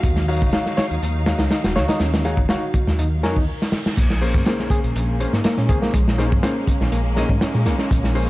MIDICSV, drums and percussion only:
0, 0, Header, 1, 2, 480
1, 0, Start_track
1, 0, Key_signature, -5, "minor"
1, 0, Tempo, 491803
1, 35, Time_signature, 4, 2, 24, 8
1, 8096, End_track
2, 0, Start_track
2, 0, Title_t, "Drums"
2, 33, Note_on_c, 9, 36, 119
2, 35, Note_on_c, 9, 42, 86
2, 131, Note_off_c, 9, 36, 0
2, 132, Note_off_c, 9, 42, 0
2, 156, Note_on_c, 9, 38, 47
2, 254, Note_off_c, 9, 38, 0
2, 281, Note_on_c, 9, 46, 80
2, 379, Note_off_c, 9, 46, 0
2, 409, Note_on_c, 9, 36, 97
2, 507, Note_off_c, 9, 36, 0
2, 512, Note_on_c, 9, 42, 89
2, 515, Note_on_c, 9, 38, 105
2, 610, Note_off_c, 9, 42, 0
2, 613, Note_off_c, 9, 38, 0
2, 643, Note_on_c, 9, 38, 45
2, 741, Note_off_c, 9, 38, 0
2, 756, Note_on_c, 9, 42, 71
2, 760, Note_on_c, 9, 38, 103
2, 854, Note_off_c, 9, 42, 0
2, 858, Note_off_c, 9, 38, 0
2, 885, Note_on_c, 9, 42, 44
2, 982, Note_off_c, 9, 42, 0
2, 1003, Note_on_c, 9, 42, 84
2, 1101, Note_off_c, 9, 42, 0
2, 1230, Note_on_c, 9, 42, 72
2, 1233, Note_on_c, 9, 38, 113
2, 1328, Note_off_c, 9, 42, 0
2, 1331, Note_off_c, 9, 38, 0
2, 1352, Note_on_c, 9, 38, 95
2, 1358, Note_on_c, 9, 42, 77
2, 1450, Note_off_c, 9, 38, 0
2, 1455, Note_off_c, 9, 42, 0
2, 1470, Note_on_c, 9, 38, 93
2, 1475, Note_on_c, 9, 42, 80
2, 1567, Note_off_c, 9, 38, 0
2, 1573, Note_off_c, 9, 42, 0
2, 1602, Note_on_c, 9, 42, 78
2, 1603, Note_on_c, 9, 38, 100
2, 1699, Note_off_c, 9, 42, 0
2, 1700, Note_off_c, 9, 38, 0
2, 1718, Note_on_c, 9, 38, 99
2, 1720, Note_on_c, 9, 42, 72
2, 1816, Note_off_c, 9, 38, 0
2, 1817, Note_off_c, 9, 42, 0
2, 1844, Note_on_c, 9, 38, 112
2, 1844, Note_on_c, 9, 42, 83
2, 1941, Note_off_c, 9, 38, 0
2, 1942, Note_off_c, 9, 42, 0
2, 1948, Note_on_c, 9, 38, 97
2, 1950, Note_on_c, 9, 42, 81
2, 2045, Note_off_c, 9, 38, 0
2, 2047, Note_off_c, 9, 42, 0
2, 2085, Note_on_c, 9, 38, 98
2, 2085, Note_on_c, 9, 42, 73
2, 2182, Note_off_c, 9, 38, 0
2, 2182, Note_off_c, 9, 42, 0
2, 2194, Note_on_c, 9, 42, 66
2, 2195, Note_on_c, 9, 38, 42
2, 2292, Note_off_c, 9, 42, 0
2, 2293, Note_off_c, 9, 38, 0
2, 2316, Note_on_c, 9, 36, 97
2, 2413, Note_off_c, 9, 36, 0
2, 2428, Note_on_c, 9, 38, 110
2, 2438, Note_on_c, 9, 42, 79
2, 2526, Note_off_c, 9, 38, 0
2, 2536, Note_off_c, 9, 42, 0
2, 2673, Note_on_c, 9, 42, 61
2, 2674, Note_on_c, 9, 36, 100
2, 2771, Note_off_c, 9, 42, 0
2, 2772, Note_off_c, 9, 36, 0
2, 2806, Note_on_c, 9, 38, 50
2, 2903, Note_off_c, 9, 38, 0
2, 2917, Note_on_c, 9, 42, 90
2, 3014, Note_off_c, 9, 42, 0
2, 3158, Note_on_c, 9, 42, 64
2, 3163, Note_on_c, 9, 38, 41
2, 3256, Note_off_c, 9, 42, 0
2, 3260, Note_off_c, 9, 38, 0
2, 3284, Note_on_c, 9, 36, 86
2, 3381, Note_off_c, 9, 36, 0
2, 3532, Note_on_c, 9, 38, 54
2, 3629, Note_off_c, 9, 38, 0
2, 3631, Note_on_c, 9, 38, 81
2, 3729, Note_off_c, 9, 38, 0
2, 3767, Note_on_c, 9, 38, 79
2, 3865, Note_off_c, 9, 38, 0
2, 3875, Note_on_c, 9, 42, 92
2, 3878, Note_on_c, 9, 36, 117
2, 3882, Note_on_c, 9, 49, 86
2, 3973, Note_off_c, 9, 42, 0
2, 3975, Note_off_c, 9, 36, 0
2, 3979, Note_off_c, 9, 49, 0
2, 4006, Note_on_c, 9, 38, 51
2, 4103, Note_off_c, 9, 38, 0
2, 4121, Note_on_c, 9, 46, 78
2, 4219, Note_off_c, 9, 46, 0
2, 4240, Note_on_c, 9, 36, 102
2, 4337, Note_off_c, 9, 36, 0
2, 4347, Note_on_c, 9, 42, 85
2, 4357, Note_on_c, 9, 38, 122
2, 4445, Note_off_c, 9, 42, 0
2, 4455, Note_off_c, 9, 38, 0
2, 4485, Note_on_c, 9, 38, 46
2, 4582, Note_off_c, 9, 38, 0
2, 4589, Note_on_c, 9, 36, 96
2, 4597, Note_on_c, 9, 42, 69
2, 4687, Note_off_c, 9, 36, 0
2, 4695, Note_off_c, 9, 42, 0
2, 4724, Note_on_c, 9, 42, 41
2, 4822, Note_off_c, 9, 42, 0
2, 4838, Note_on_c, 9, 42, 88
2, 4936, Note_off_c, 9, 42, 0
2, 5079, Note_on_c, 9, 42, 62
2, 5177, Note_off_c, 9, 42, 0
2, 5205, Note_on_c, 9, 38, 43
2, 5303, Note_off_c, 9, 38, 0
2, 5311, Note_on_c, 9, 42, 96
2, 5318, Note_on_c, 9, 38, 113
2, 5408, Note_off_c, 9, 42, 0
2, 5415, Note_off_c, 9, 38, 0
2, 5436, Note_on_c, 9, 38, 44
2, 5534, Note_off_c, 9, 38, 0
2, 5553, Note_on_c, 9, 36, 100
2, 5556, Note_on_c, 9, 42, 73
2, 5651, Note_off_c, 9, 36, 0
2, 5653, Note_off_c, 9, 42, 0
2, 5685, Note_on_c, 9, 38, 55
2, 5782, Note_off_c, 9, 38, 0
2, 5795, Note_on_c, 9, 36, 120
2, 5796, Note_on_c, 9, 42, 83
2, 5893, Note_off_c, 9, 36, 0
2, 5893, Note_off_c, 9, 42, 0
2, 5932, Note_on_c, 9, 38, 53
2, 6029, Note_off_c, 9, 38, 0
2, 6037, Note_on_c, 9, 38, 38
2, 6041, Note_on_c, 9, 42, 66
2, 6134, Note_off_c, 9, 38, 0
2, 6138, Note_off_c, 9, 42, 0
2, 6171, Note_on_c, 9, 36, 92
2, 6269, Note_off_c, 9, 36, 0
2, 6277, Note_on_c, 9, 38, 121
2, 6279, Note_on_c, 9, 42, 88
2, 6374, Note_off_c, 9, 38, 0
2, 6377, Note_off_c, 9, 42, 0
2, 6514, Note_on_c, 9, 36, 90
2, 6522, Note_on_c, 9, 42, 69
2, 6612, Note_off_c, 9, 36, 0
2, 6619, Note_off_c, 9, 42, 0
2, 6647, Note_on_c, 9, 38, 49
2, 6744, Note_off_c, 9, 38, 0
2, 6755, Note_on_c, 9, 42, 92
2, 6852, Note_off_c, 9, 42, 0
2, 6992, Note_on_c, 9, 38, 44
2, 6997, Note_on_c, 9, 42, 74
2, 7090, Note_off_c, 9, 38, 0
2, 7094, Note_off_c, 9, 42, 0
2, 7117, Note_on_c, 9, 36, 84
2, 7215, Note_off_c, 9, 36, 0
2, 7233, Note_on_c, 9, 38, 117
2, 7240, Note_on_c, 9, 42, 81
2, 7331, Note_off_c, 9, 38, 0
2, 7338, Note_off_c, 9, 42, 0
2, 7356, Note_on_c, 9, 38, 38
2, 7454, Note_off_c, 9, 38, 0
2, 7473, Note_on_c, 9, 42, 74
2, 7474, Note_on_c, 9, 38, 52
2, 7571, Note_off_c, 9, 42, 0
2, 7572, Note_off_c, 9, 38, 0
2, 7597, Note_on_c, 9, 38, 46
2, 7695, Note_off_c, 9, 38, 0
2, 7720, Note_on_c, 9, 36, 124
2, 7724, Note_on_c, 9, 42, 90
2, 7817, Note_off_c, 9, 36, 0
2, 7821, Note_off_c, 9, 42, 0
2, 7848, Note_on_c, 9, 38, 51
2, 7946, Note_off_c, 9, 38, 0
2, 7957, Note_on_c, 9, 46, 84
2, 8055, Note_off_c, 9, 46, 0
2, 8096, End_track
0, 0, End_of_file